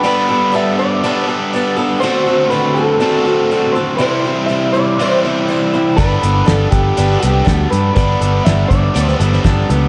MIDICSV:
0, 0, Header, 1, 6, 480
1, 0, Start_track
1, 0, Key_signature, 1, "major"
1, 0, Tempo, 494641
1, 43, Time_signature, 4, 2, 24, 8
1, 9591, End_track
2, 0, Start_track
2, 0, Title_t, "Clean electric guitar"
2, 0, Program_c, 0, 27
2, 61, Note_on_c, 0, 71, 93
2, 536, Note_off_c, 0, 71, 0
2, 540, Note_on_c, 0, 76, 84
2, 763, Note_off_c, 0, 76, 0
2, 767, Note_on_c, 0, 74, 88
2, 1212, Note_off_c, 0, 74, 0
2, 1944, Note_on_c, 0, 72, 95
2, 2420, Note_off_c, 0, 72, 0
2, 2424, Note_on_c, 0, 71, 73
2, 2662, Note_on_c, 0, 69, 77
2, 2682, Note_off_c, 0, 71, 0
2, 3130, Note_off_c, 0, 69, 0
2, 3142, Note_on_c, 0, 69, 79
2, 3614, Note_on_c, 0, 72, 91
2, 3649, Note_off_c, 0, 69, 0
2, 3841, Note_off_c, 0, 72, 0
2, 3853, Note_on_c, 0, 72, 96
2, 4326, Note_off_c, 0, 72, 0
2, 4330, Note_on_c, 0, 76, 92
2, 4570, Note_off_c, 0, 76, 0
2, 4587, Note_on_c, 0, 74, 81
2, 5042, Note_off_c, 0, 74, 0
2, 5790, Note_on_c, 0, 71, 91
2, 6272, Note_on_c, 0, 69, 70
2, 6293, Note_off_c, 0, 71, 0
2, 6508, Note_off_c, 0, 69, 0
2, 6511, Note_on_c, 0, 67, 76
2, 6973, Note_off_c, 0, 67, 0
2, 6984, Note_on_c, 0, 67, 74
2, 7324, Note_off_c, 0, 67, 0
2, 7324, Note_on_c, 0, 66, 74
2, 7441, Note_off_c, 0, 66, 0
2, 7477, Note_on_c, 0, 71, 90
2, 7701, Note_off_c, 0, 71, 0
2, 7712, Note_on_c, 0, 71, 96
2, 8195, Note_off_c, 0, 71, 0
2, 8199, Note_on_c, 0, 76, 90
2, 8422, Note_off_c, 0, 76, 0
2, 8426, Note_on_c, 0, 74, 94
2, 8881, Note_off_c, 0, 74, 0
2, 9591, End_track
3, 0, Start_track
3, 0, Title_t, "Overdriven electric guitar"
3, 0, Program_c, 1, 29
3, 62, Note_on_c, 1, 71, 89
3, 999, Note_off_c, 1, 71, 0
3, 1027, Note_on_c, 1, 71, 75
3, 1962, Note_off_c, 1, 71, 0
3, 1975, Note_on_c, 1, 57, 82
3, 1997, Note_on_c, 1, 72, 88
3, 2916, Note_off_c, 1, 57, 0
3, 2933, Note_on_c, 1, 57, 68
3, 2947, Note_off_c, 1, 72, 0
3, 2951, Note_on_c, 1, 72, 80
3, 3875, Note_off_c, 1, 57, 0
3, 3884, Note_off_c, 1, 72, 0
3, 5824, Note_on_c, 1, 71, 91
3, 6776, Note_off_c, 1, 71, 0
3, 6780, Note_on_c, 1, 71, 76
3, 7718, Note_off_c, 1, 71, 0
3, 7752, Note_on_c, 1, 71, 88
3, 8684, Note_off_c, 1, 71, 0
3, 8698, Note_on_c, 1, 71, 87
3, 9591, Note_off_c, 1, 71, 0
3, 9591, End_track
4, 0, Start_track
4, 0, Title_t, "Steel-string acoustic guitar"
4, 0, Program_c, 2, 25
4, 33, Note_on_c, 2, 55, 73
4, 43, Note_on_c, 2, 62, 71
4, 46, Note_on_c, 2, 59, 71
4, 54, Note_on_c, 2, 69, 78
4, 265, Note_off_c, 2, 69, 0
4, 275, Note_off_c, 2, 59, 0
4, 277, Note_on_c, 2, 69, 50
4, 278, Note_off_c, 2, 55, 0
4, 283, Note_off_c, 2, 62, 0
4, 287, Note_on_c, 2, 59, 45
4, 302, Note_on_c, 2, 62, 40
4, 506, Note_on_c, 2, 55, 62
4, 507, Note_off_c, 2, 62, 0
4, 515, Note_off_c, 2, 59, 0
4, 519, Note_on_c, 2, 62, 56
4, 520, Note_off_c, 2, 69, 0
4, 526, Note_on_c, 2, 59, 60
4, 531, Note_on_c, 2, 69, 64
4, 750, Note_off_c, 2, 69, 0
4, 755, Note_off_c, 2, 55, 0
4, 761, Note_off_c, 2, 62, 0
4, 761, Note_on_c, 2, 69, 45
4, 762, Note_off_c, 2, 59, 0
4, 774, Note_on_c, 2, 59, 42
4, 786, Note_on_c, 2, 62, 36
4, 996, Note_off_c, 2, 62, 0
4, 1003, Note_off_c, 2, 69, 0
4, 1005, Note_off_c, 2, 59, 0
4, 1007, Note_on_c, 2, 62, 80
4, 1010, Note_on_c, 2, 55, 66
4, 1016, Note_on_c, 2, 59, 85
4, 1028, Note_on_c, 2, 69, 78
4, 1228, Note_off_c, 2, 69, 0
4, 1239, Note_on_c, 2, 69, 47
4, 1243, Note_off_c, 2, 59, 0
4, 1246, Note_off_c, 2, 62, 0
4, 1247, Note_off_c, 2, 55, 0
4, 1255, Note_on_c, 2, 59, 45
4, 1268, Note_on_c, 2, 62, 40
4, 1482, Note_off_c, 2, 69, 0
4, 1486, Note_off_c, 2, 62, 0
4, 1489, Note_on_c, 2, 55, 66
4, 1490, Note_off_c, 2, 59, 0
4, 1498, Note_on_c, 2, 62, 62
4, 1510, Note_on_c, 2, 59, 64
4, 1514, Note_on_c, 2, 69, 80
4, 1702, Note_off_c, 2, 69, 0
4, 1713, Note_off_c, 2, 59, 0
4, 1714, Note_on_c, 2, 69, 63
4, 1725, Note_on_c, 2, 59, 55
4, 1727, Note_off_c, 2, 55, 0
4, 1731, Note_off_c, 2, 62, 0
4, 1744, Note_on_c, 2, 62, 48
4, 1957, Note_on_c, 2, 50, 71
4, 1960, Note_off_c, 2, 69, 0
4, 1965, Note_off_c, 2, 59, 0
4, 1966, Note_off_c, 2, 62, 0
4, 1969, Note_on_c, 2, 60, 77
4, 1975, Note_on_c, 2, 66, 84
4, 1978, Note_on_c, 2, 69, 76
4, 2185, Note_off_c, 2, 69, 0
4, 2197, Note_on_c, 2, 69, 52
4, 2200, Note_off_c, 2, 66, 0
4, 2201, Note_off_c, 2, 50, 0
4, 2207, Note_off_c, 2, 60, 0
4, 2212, Note_on_c, 2, 66, 46
4, 2219, Note_on_c, 2, 60, 44
4, 2432, Note_off_c, 2, 60, 0
4, 2436, Note_on_c, 2, 50, 59
4, 2441, Note_off_c, 2, 66, 0
4, 2441, Note_off_c, 2, 69, 0
4, 2444, Note_on_c, 2, 60, 63
4, 2452, Note_on_c, 2, 66, 63
4, 2456, Note_on_c, 2, 69, 64
4, 2665, Note_off_c, 2, 69, 0
4, 2676, Note_on_c, 2, 69, 48
4, 2680, Note_off_c, 2, 66, 0
4, 2681, Note_off_c, 2, 50, 0
4, 2685, Note_off_c, 2, 60, 0
4, 2691, Note_on_c, 2, 66, 47
4, 2700, Note_on_c, 2, 60, 42
4, 2904, Note_off_c, 2, 60, 0
4, 2908, Note_off_c, 2, 66, 0
4, 2912, Note_on_c, 2, 50, 75
4, 2915, Note_on_c, 2, 60, 75
4, 2916, Note_off_c, 2, 69, 0
4, 2919, Note_on_c, 2, 66, 71
4, 2928, Note_on_c, 2, 69, 75
4, 3141, Note_off_c, 2, 69, 0
4, 3153, Note_on_c, 2, 69, 50
4, 3156, Note_off_c, 2, 66, 0
4, 3159, Note_off_c, 2, 50, 0
4, 3160, Note_off_c, 2, 60, 0
4, 3167, Note_on_c, 2, 66, 46
4, 3180, Note_on_c, 2, 60, 40
4, 3399, Note_off_c, 2, 69, 0
4, 3403, Note_off_c, 2, 60, 0
4, 3406, Note_off_c, 2, 66, 0
4, 3409, Note_on_c, 2, 50, 58
4, 3415, Note_on_c, 2, 60, 68
4, 3421, Note_on_c, 2, 66, 64
4, 3432, Note_on_c, 2, 69, 63
4, 3632, Note_off_c, 2, 69, 0
4, 3640, Note_off_c, 2, 66, 0
4, 3643, Note_on_c, 2, 69, 56
4, 3647, Note_off_c, 2, 50, 0
4, 3650, Note_off_c, 2, 60, 0
4, 3652, Note_on_c, 2, 66, 46
4, 3664, Note_on_c, 2, 60, 38
4, 3866, Note_on_c, 2, 48, 79
4, 3867, Note_off_c, 2, 60, 0
4, 3869, Note_on_c, 2, 52, 83
4, 3876, Note_on_c, 2, 55, 73
4, 3878, Note_on_c, 2, 60, 81
4, 3882, Note_off_c, 2, 66, 0
4, 3882, Note_off_c, 2, 69, 0
4, 3886, Note_on_c, 2, 64, 78
4, 3886, Note_on_c, 2, 72, 77
4, 4110, Note_off_c, 2, 72, 0
4, 4116, Note_off_c, 2, 48, 0
4, 4117, Note_off_c, 2, 52, 0
4, 4121, Note_off_c, 2, 55, 0
4, 4121, Note_on_c, 2, 72, 50
4, 4122, Note_off_c, 2, 60, 0
4, 4126, Note_off_c, 2, 64, 0
4, 4138, Note_on_c, 2, 64, 47
4, 4143, Note_on_c, 2, 60, 44
4, 4153, Note_on_c, 2, 55, 41
4, 4342, Note_off_c, 2, 55, 0
4, 4354, Note_off_c, 2, 60, 0
4, 4354, Note_on_c, 2, 55, 58
4, 4363, Note_off_c, 2, 64, 0
4, 4364, Note_off_c, 2, 72, 0
4, 4366, Note_on_c, 2, 60, 62
4, 4374, Note_on_c, 2, 64, 63
4, 4380, Note_on_c, 2, 72, 62
4, 4585, Note_off_c, 2, 72, 0
4, 4597, Note_off_c, 2, 64, 0
4, 4597, Note_on_c, 2, 72, 52
4, 4600, Note_off_c, 2, 55, 0
4, 4606, Note_off_c, 2, 60, 0
4, 4609, Note_on_c, 2, 64, 45
4, 4618, Note_on_c, 2, 60, 50
4, 4621, Note_on_c, 2, 55, 38
4, 4842, Note_off_c, 2, 72, 0
4, 4846, Note_off_c, 2, 55, 0
4, 4848, Note_off_c, 2, 64, 0
4, 4848, Note_on_c, 2, 48, 76
4, 4852, Note_off_c, 2, 60, 0
4, 4855, Note_on_c, 2, 52, 75
4, 4858, Note_on_c, 2, 55, 72
4, 4861, Note_on_c, 2, 64, 69
4, 4865, Note_on_c, 2, 60, 79
4, 4871, Note_on_c, 2, 72, 85
4, 5073, Note_off_c, 2, 72, 0
4, 5081, Note_off_c, 2, 64, 0
4, 5085, Note_off_c, 2, 60, 0
4, 5085, Note_on_c, 2, 72, 46
4, 5087, Note_off_c, 2, 48, 0
4, 5091, Note_off_c, 2, 52, 0
4, 5092, Note_off_c, 2, 55, 0
4, 5093, Note_on_c, 2, 64, 40
4, 5097, Note_on_c, 2, 60, 41
4, 5106, Note_on_c, 2, 55, 42
4, 5311, Note_off_c, 2, 55, 0
4, 5322, Note_on_c, 2, 55, 71
4, 5324, Note_off_c, 2, 60, 0
4, 5325, Note_off_c, 2, 72, 0
4, 5329, Note_off_c, 2, 64, 0
4, 5336, Note_on_c, 2, 60, 65
4, 5344, Note_on_c, 2, 64, 67
4, 5349, Note_on_c, 2, 72, 67
4, 5553, Note_off_c, 2, 72, 0
4, 5559, Note_off_c, 2, 64, 0
4, 5562, Note_off_c, 2, 60, 0
4, 5564, Note_off_c, 2, 55, 0
4, 5565, Note_on_c, 2, 72, 59
4, 5571, Note_on_c, 2, 64, 52
4, 5573, Note_on_c, 2, 60, 46
4, 5582, Note_on_c, 2, 55, 47
4, 5785, Note_off_c, 2, 55, 0
4, 5796, Note_on_c, 2, 55, 64
4, 5800, Note_off_c, 2, 60, 0
4, 5801, Note_off_c, 2, 64, 0
4, 5804, Note_on_c, 2, 62, 71
4, 5805, Note_on_c, 2, 59, 75
4, 5806, Note_off_c, 2, 72, 0
4, 5816, Note_on_c, 2, 69, 74
4, 6017, Note_off_c, 2, 69, 0
4, 6029, Note_on_c, 2, 69, 54
4, 6033, Note_off_c, 2, 59, 0
4, 6039, Note_off_c, 2, 62, 0
4, 6041, Note_off_c, 2, 55, 0
4, 6045, Note_on_c, 2, 59, 46
4, 6051, Note_on_c, 2, 62, 38
4, 6260, Note_off_c, 2, 62, 0
4, 6264, Note_on_c, 2, 55, 59
4, 6270, Note_off_c, 2, 59, 0
4, 6271, Note_on_c, 2, 62, 53
4, 6277, Note_off_c, 2, 69, 0
4, 6282, Note_on_c, 2, 59, 66
4, 6294, Note_on_c, 2, 69, 64
4, 6501, Note_off_c, 2, 69, 0
4, 6512, Note_off_c, 2, 59, 0
4, 6513, Note_on_c, 2, 69, 46
4, 6515, Note_off_c, 2, 55, 0
4, 6519, Note_off_c, 2, 62, 0
4, 6524, Note_on_c, 2, 59, 46
4, 6537, Note_on_c, 2, 62, 42
4, 6757, Note_off_c, 2, 62, 0
4, 6759, Note_off_c, 2, 69, 0
4, 6764, Note_on_c, 2, 55, 65
4, 6765, Note_off_c, 2, 59, 0
4, 6769, Note_on_c, 2, 62, 77
4, 6781, Note_on_c, 2, 59, 79
4, 6790, Note_on_c, 2, 69, 79
4, 6978, Note_off_c, 2, 69, 0
4, 6989, Note_on_c, 2, 69, 47
4, 6999, Note_off_c, 2, 59, 0
4, 7001, Note_off_c, 2, 62, 0
4, 7005, Note_off_c, 2, 55, 0
4, 7011, Note_on_c, 2, 59, 42
4, 7013, Note_on_c, 2, 62, 39
4, 7224, Note_off_c, 2, 62, 0
4, 7227, Note_on_c, 2, 55, 66
4, 7236, Note_on_c, 2, 62, 63
4, 7238, Note_off_c, 2, 69, 0
4, 7240, Note_off_c, 2, 59, 0
4, 7251, Note_on_c, 2, 59, 68
4, 7251, Note_on_c, 2, 69, 66
4, 7457, Note_off_c, 2, 69, 0
4, 7469, Note_on_c, 2, 69, 47
4, 7475, Note_off_c, 2, 59, 0
4, 7476, Note_off_c, 2, 55, 0
4, 7481, Note_off_c, 2, 62, 0
4, 7487, Note_on_c, 2, 59, 42
4, 7504, Note_on_c, 2, 62, 44
4, 7710, Note_off_c, 2, 62, 0
4, 7717, Note_off_c, 2, 69, 0
4, 7718, Note_off_c, 2, 59, 0
4, 7722, Note_on_c, 2, 62, 80
4, 7724, Note_on_c, 2, 55, 68
4, 7729, Note_on_c, 2, 59, 78
4, 7735, Note_on_c, 2, 69, 72
4, 7951, Note_off_c, 2, 69, 0
4, 7962, Note_on_c, 2, 69, 50
4, 7963, Note_off_c, 2, 59, 0
4, 7964, Note_off_c, 2, 62, 0
4, 7965, Note_off_c, 2, 55, 0
4, 7975, Note_on_c, 2, 59, 40
4, 7990, Note_on_c, 2, 62, 42
4, 8203, Note_off_c, 2, 62, 0
4, 8204, Note_off_c, 2, 69, 0
4, 8206, Note_on_c, 2, 55, 63
4, 8210, Note_off_c, 2, 59, 0
4, 8214, Note_on_c, 2, 62, 65
4, 8228, Note_on_c, 2, 59, 57
4, 8229, Note_on_c, 2, 69, 62
4, 8443, Note_off_c, 2, 69, 0
4, 8446, Note_off_c, 2, 55, 0
4, 8450, Note_off_c, 2, 62, 0
4, 8455, Note_on_c, 2, 69, 48
4, 8457, Note_off_c, 2, 59, 0
4, 8470, Note_on_c, 2, 59, 43
4, 8478, Note_on_c, 2, 62, 43
4, 8677, Note_off_c, 2, 62, 0
4, 8680, Note_off_c, 2, 59, 0
4, 8686, Note_on_c, 2, 55, 75
4, 8689, Note_on_c, 2, 62, 74
4, 8690, Note_off_c, 2, 69, 0
4, 8691, Note_on_c, 2, 59, 88
4, 8701, Note_on_c, 2, 69, 82
4, 8911, Note_off_c, 2, 69, 0
4, 8923, Note_on_c, 2, 69, 53
4, 8926, Note_off_c, 2, 55, 0
4, 8927, Note_off_c, 2, 62, 0
4, 8928, Note_off_c, 2, 59, 0
4, 8939, Note_on_c, 2, 59, 48
4, 8942, Note_on_c, 2, 62, 47
4, 9160, Note_off_c, 2, 62, 0
4, 9163, Note_on_c, 2, 55, 72
4, 9164, Note_off_c, 2, 69, 0
4, 9166, Note_off_c, 2, 59, 0
4, 9172, Note_on_c, 2, 62, 75
4, 9178, Note_on_c, 2, 59, 75
4, 9180, Note_on_c, 2, 69, 76
4, 9394, Note_off_c, 2, 69, 0
4, 9404, Note_off_c, 2, 55, 0
4, 9405, Note_on_c, 2, 69, 54
4, 9408, Note_off_c, 2, 62, 0
4, 9411, Note_off_c, 2, 59, 0
4, 9422, Note_on_c, 2, 59, 56
4, 9433, Note_on_c, 2, 62, 41
4, 9591, Note_off_c, 2, 59, 0
4, 9591, Note_off_c, 2, 62, 0
4, 9591, Note_off_c, 2, 69, 0
4, 9591, End_track
5, 0, Start_track
5, 0, Title_t, "Picked electric bass"
5, 0, Program_c, 3, 34
5, 5803, Note_on_c, 3, 31, 83
5, 5978, Note_off_c, 3, 31, 0
5, 6048, Note_on_c, 3, 31, 78
5, 6221, Note_off_c, 3, 31, 0
5, 6288, Note_on_c, 3, 31, 78
5, 6461, Note_off_c, 3, 31, 0
5, 6527, Note_on_c, 3, 31, 83
5, 6701, Note_off_c, 3, 31, 0
5, 6778, Note_on_c, 3, 31, 93
5, 6947, Note_off_c, 3, 31, 0
5, 7019, Note_on_c, 3, 36, 75
5, 7188, Note_off_c, 3, 36, 0
5, 7252, Note_on_c, 3, 38, 86
5, 7424, Note_off_c, 3, 38, 0
5, 7495, Note_on_c, 3, 43, 91
5, 7666, Note_off_c, 3, 43, 0
5, 7732, Note_on_c, 3, 31, 91
5, 7904, Note_off_c, 3, 31, 0
5, 7968, Note_on_c, 3, 31, 81
5, 8141, Note_off_c, 3, 31, 0
5, 8214, Note_on_c, 3, 31, 87
5, 8385, Note_off_c, 3, 31, 0
5, 8455, Note_on_c, 3, 31, 81
5, 8625, Note_off_c, 3, 31, 0
5, 8694, Note_on_c, 3, 38, 91
5, 8865, Note_off_c, 3, 38, 0
5, 8927, Note_on_c, 3, 31, 81
5, 9100, Note_off_c, 3, 31, 0
5, 9173, Note_on_c, 3, 31, 83
5, 9344, Note_off_c, 3, 31, 0
5, 9412, Note_on_c, 3, 37, 92
5, 9583, Note_off_c, 3, 37, 0
5, 9591, End_track
6, 0, Start_track
6, 0, Title_t, "Drums"
6, 5806, Note_on_c, 9, 36, 104
6, 5806, Note_on_c, 9, 42, 65
6, 5903, Note_off_c, 9, 36, 0
6, 5903, Note_off_c, 9, 42, 0
6, 6049, Note_on_c, 9, 42, 53
6, 6146, Note_off_c, 9, 42, 0
6, 6286, Note_on_c, 9, 42, 73
6, 6287, Note_on_c, 9, 38, 108
6, 6383, Note_off_c, 9, 42, 0
6, 6384, Note_off_c, 9, 38, 0
6, 6522, Note_on_c, 9, 42, 62
6, 6526, Note_on_c, 9, 36, 81
6, 6619, Note_off_c, 9, 42, 0
6, 6623, Note_off_c, 9, 36, 0
6, 6766, Note_on_c, 9, 42, 74
6, 6863, Note_off_c, 9, 42, 0
6, 7011, Note_on_c, 9, 42, 62
6, 7108, Note_off_c, 9, 42, 0
6, 7250, Note_on_c, 9, 36, 74
6, 7255, Note_on_c, 9, 42, 75
6, 7256, Note_on_c, 9, 38, 103
6, 7347, Note_off_c, 9, 36, 0
6, 7352, Note_off_c, 9, 42, 0
6, 7353, Note_off_c, 9, 38, 0
6, 7497, Note_on_c, 9, 42, 55
6, 7594, Note_off_c, 9, 42, 0
6, 7732, Note_on_c, 9, 36, 109
6, 7741, Note_on_c, 9, 42, 76
6, 7829, Note_off_c, 9, 36, 0
6, 7838, Note_off_c, 9, 42, 0
6, 7974, Note_on_c, 9, 42, 58
6, 8071, Note_off_c, 9, 42, 0
6, 8214, Note_on_c, 9, 42, 87
6, 8215, Note_on_c, 9, 38, 103
6, 8311, Note_off_c, 9, 42, 0
6, 8312, Note_off_c, 9, 38, 0
6, 8451, Note_on_c, 9, 36, 80
6, 8452, Note_on_c, 9, 42, 62
6, 8548, Note_off_c, 9, 36, 0
6, 8549, Note_off_c, 9, 42, 0
6, 8694, Note_on_c, 9, 42, 85
6, 8791, Note_off_c, 9, 42, 0
6, 8808, Note_on_c, 9, 38, 33
6, 8905, Note_off_c, 9, 38, 0
6, 8934, Note_on_c, 9, 42, 59
6, 9031, Note_off_c, 9, 42, 0
6, 9053, Note_on_c, 9, 38, 29
6, 9150, Note_off_c, 9, 38, 0
6, 9169, Note_on_c, 9, 36, 80
6, 9173, Note_on_c, 9, 42, 67
6, 9174, Note_on_c, 9, 38, 102
6, 9266, Note_off_c, 9, 36, 0
6, 9270, Note_off_c, 9, 42, 0
6, 9271, Note_off_c, 9, 38, 0
6, 9415, Note_on_c, 9, 42, 56
6, 9512, Note_off_c, 9, 42, 0
6, 9591, End_track
0, 0, End_of_file